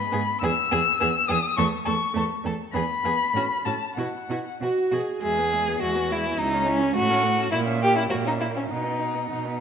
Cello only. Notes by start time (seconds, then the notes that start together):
0.13 G#2
0.42 E2
0.72 E2
1.01 E2
1.29 E2
1.58 E2
1.87 E2
2.15 E2
2.44 E2
2.74 E2
3.04 E2
3.34 A2
3.66 A2
3.97 B2
4.29 B2
4.61 B2
4.92 B2
5.22 E2
5.81 E2
6.38 C#2
6.96 A2
7.53 A#2
8.10 A#2
8.70 B2
9.31 B2